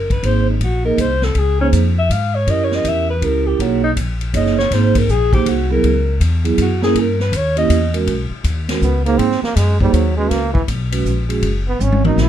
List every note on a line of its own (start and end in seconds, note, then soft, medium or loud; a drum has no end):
0.00 0.22 F#1 medium
0.00 0.11 A#4 medium
0.10 0.28 B4 medium
0.10 kick medium
0.10 ride soft
0.23 0.59 G#1 medium
0.23 0.45 A#3 medium
0.23 0.45 D#4 medium
0.23 0.45 G#4 medium
0.23 0.45 C5 medium
0.23 0.49 C5 medium
0.23 kick soft
0.23 ride medium
0.50 0.65 D#4 soft
0.60 0.97 A#1 medium
0.60 0.85 F#4 medium
0.60 kick soft
0.60 ride medium
0.84 0.96 A#3 medium
0.84 0.96 D#4 medium
0.84 0.96 G#4 medium
0.84 1.02 A#4 medium
0.84 0.96 D#5 medium
0.98 1.34 C2 medium
0.98 1.26 C5 loud
0.98 kick soft
0.98 hi-hat pedal medium
0.98 ride medium
1.22 1.40 A4 medium
1.22 snare medium
1.35 1.71 C#2 medium
1.35 1.60 G#4 medium
1.35 kick soft
1.35 ride medium
1.60 1.71 A#3 medium
1.60 1.68 C#4 medium
1.60 1.71 D#4 medium
1.60 1.72 G#4 medium
1.60 1.72 C5 medium
1.73 2.09 F2 loud
1.73 kick soft
1.73 hi-hat pedal medium
1.73 ride medium
1.99 2.14 E5 medium
2.10 2.46 G#2 medium
2.10 2.37 F5 medium
2.10 kick soft
2.10 hi-hat pedal medium
2.10 ride medium
2.35 2.52 C#5 medium
2.47 2.83 F#2 medium
2.47 3.04 C#4 medium
2.47 3.04 E4 medium
2.47 3.04 G4 medium
2.47 3.04 A#4 medium
2.47 2.66 D#5 loud
2.47 kick soft
2.47 ride medium
2.64 2.77 C#5 medium
2.71 2.90 D#5 medium
2.71 snare soft
2.84 3.20 E2 medium
2.84 kick soft
2.84 hi-hat pedal medium
2.84 ride medium
2.88 3.10 E5 loud
3.10 3.27 B4 medium
3.21 3.58 C#2 medium
3.21 3.59 C#4 medium
3.21 3.59 E4 medium
3.21 3.59 G4 medium
3.21 3.59 A#4 medium
3.21 kick soft
3.21 ride medium
3.25 3.49 A#4 medium
3.47 3.64 G4 medium
3.59 3.95 B1 medium
3.59 3.81 A#3 medium
3.59 3.81 D#4 medium
3.59 3.83 F#4 medium
3.59 3.81 G#4 medium
3.59 3.81 C#5 medium
3.59 kick soft
3.59 ride medium
3.84 3.91 D#4 medium
3.96 4.33 A#1 medium
3.96 kick soft
3.96 hi-hat pedal medium
3.96 ride medium
4.21 ride soft
4.33 4.70 F#1 medium
4.33 4.55 A#3 medium
4.33 4.55 D#4 medium
4.33 4.55 G#4 medium
4.33 4.55 C#5 medium
4.33 4.58 D#5 medium
4.33 kick soft
4.33 hi-hat pedal soft
4.33 ride medium
4.46 snare soft
4.59 4.75 C#5 medium
4.59 snare medium
4.71 5.07 G#1 medium
4.71 4.93 A#3 medium
4.71 4.93 D#4 medium
4.71 4.93 G#4 medium
4.71 4.93 C5 medium
4.71 5.00 C5 medium
4.71 kick soft
4.71 snare soft
4.71 ride medium
4.95 5.12 A#4 medium
4.95 kick medium
4.95 ride medium
5.08 5.44 A#1 medium
5.08 5.33 G#4 medium
5.08 kick soft
5.08 hi-hat pedal medium
5.33 5.45 A#3 medium
5.33 5.44 D#4 medium
5.33 5.51 G4 medium
5.33 5.45 G#4 medium
5.33 5.44 C5 medium
5.33 kick medium
5.33 ride soft
5.46 5.82 C2 medium
5.46 5.72 F#4 medium
5.46 kick soft
5.46 ride medium
5.70 5.82 F#3 medium
5.70 5.82 B3 medium
5.70 5.82 E4 medium
5.70 5.82 G#4 medium
5.70 6.18 A#4 medium
5.83 6.19 C#2 medium
5.83 kick soft
5.83 ride medium
6.20 6.56 E2 medium
6.20 kick soft
6.20 hi-hat pedal medium
6.20 ride medium
6.44 6.56 F#3 medium
6.44 6.56 B3 medium
6.44 6.56 E4 medium
6.44 6.56 G#4 loud
6.44 ride medium
6.58 6.94 F#2 medium
6.58 kick soft
6.58 hi-hat pedal medium
6.58 ride medium
6.62 6.82 F#4 medium
6.82 6.94 A#3 medium
6.82 6.94 C#4 medium
6.82 6.94 E4 medium
6.82 7.01 G#4 loud
6.82 6.94 A#4 medium
6.82 snare soft
6.95 7.31 G2 medium
6.95 kick soft
6.95 ride medium
7.00 7.21 A#4 medium
7.20 7.38 B4 medium
7.20 snare soft
7.32 7.68 D#2 loud
7.32 kick soft
7.32 hi-hat pedal medium
7.32 ride medium
7.37 7.58 C#5 medium
7.56 7.68 A#3 medium
7.56 7.68 C#4 medium
7.56 7.68 E4 medium
7.56 7.68 G4 medium
7.56 7.98 D#5 loud
7.56 ride medium
7.70 8.06 E2 loud
7.70 kick soft
7.70 hi-hat pedal medium
7.70 ride medium
7.94 8.05 G#3 medium
7.94 8.06 C#4 medium
7.94 8.05 F#4 medium
7.94 8.06 A#4 loud
7.94 ride medium
8.07 8.29 B1 medium
8.07 kick soft
8.07 ride medium
8.30 muted upright bass stroke soft
8.44 8.80 D#2 medium
8.44 kick soft
8.44 hi-hat pedal medium
8.44 ride medium
8.69 8.81 G#3 medium
8.69 8.80 C#4 medium
8.69 8.80 F#4 medium
8.69 8.81 A#4 medium
8.69 snare medium
8.69 ride medium
8.81 9.18 C#2 medium
8.81 9.05 B3 medium
8.81 kick soft
8.81 hi-hat pedal medium
9.05 9.20 A#3 loud
9.05 9.18 A#3 medium
9.05 9.17 D#4 medium
9.05 9.18 G#4 medium
9.05 9.18 C5 medium
9.05 ride soft
9.18 9.41 G#2 medium
9.18 9.43 C4 loud
9.18 kick soft
9.18 ride medium
9.31 snare soft
9.42 9.58 A#3 medium
9.42 muted upright bass stroke soft
9.42 snare medium
9.56 9.92 F#2 medium
9.56 9.80 G#3 medium
9.56 kick soft
9.56 snare soft
9.56 hi-hat pedal medium
9.56 ride medium
9.80 9.95 G3 medium
9.80 9.92 A#3 medium
9.80 9.92 D#4 medium
9.80 9.92 G#4 medium
9.80 9.92 C5 medium
9.80 kick medium
9.93 10.29 D#2 medium
9.93 10.16 F#3 medium
9.93 kick soft
9.93 hi-hat pedal medium
9.93 ride medium
10.17 10.32 G#3 loud
10.17 10.29 G#3 medium
10.17 10.30 C#4 medium
10.17 10.29 F#4 medium
10.17 10.30 B4 medium
10.30 10.67 C#2 medium
10.30 10.53 A#3 medium
10.30 kick soft
10.30 snare soft
10.30 ride medium
10.54 10.62 E3 medium
10.54 kick medium
10.68 11.04 B1 medium
10.68 kick soft
10.68 hi-hat pedal medium
10.68 ride medium
10.92 11.04 G#3 medium
10.92 11.04 C#4 medium
10.92 11.04 F#4 medium
10.92 11.04 B4 medium
10.92 ride medium
11.05 11.41 A#1 medium
11.05 kick soft
11.05 hi-hat pedal medium
11.29 11.41 G#3 medium
11.29 11.41 C#4 medium
11.29 11.41 F#4 medium
11.29 11.41 G#4 medium
11.29 ride medium
11.42 11.78 F#1 medium
11.42 kick soft
11.42 ride medium
11.68 11.84 B3 medium
11.79 12.16 G#1 medium
11.79 12.05 C#4 medium
11.79 hi-hat pedal medium
11.79 high tom medium
11.92 high tom medium
12.04 12.16 G#3 medium
12.04 12.16 C#4 medium
12.04 12.23 D#4 medium
12.04 12.16 F#4 medium
12.04 12.16 A#4 medium
12.04 mid tom medium
12.16 12.29 A#1 medium
12.16 snare medium
12.16 hi-hat pedal medium
12.21 12.29 E4 loud